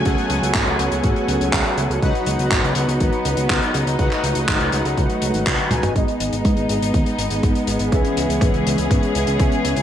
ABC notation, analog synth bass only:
X:1
M:4/4
L:1/16
Q:1/4=122
K:Bmix
V:1 name="Analog synth bass" clef=bass
C,, z C,, C,, G,,, C,, C,, C,, G,,, z C,, C,, C,, z C,, C,, | C,, z C,, C,, G,,, C,, C,, C,, G,,, z C,, C,, C,, z C,, C,, | C,, z C,, C,, G,,, C,, C,, C,, C,, z C,, G,,, C,, z C,, G,,, | G,,, z G,,, G,,, G,, G,,, G,,, G,,, D,, z G,,, G,,, G,,, z G,,, G,,, |
C,, z C,, C,, G,,, C,, C,, C,, G,,, z C,, C,, C,, z C,, C,, |]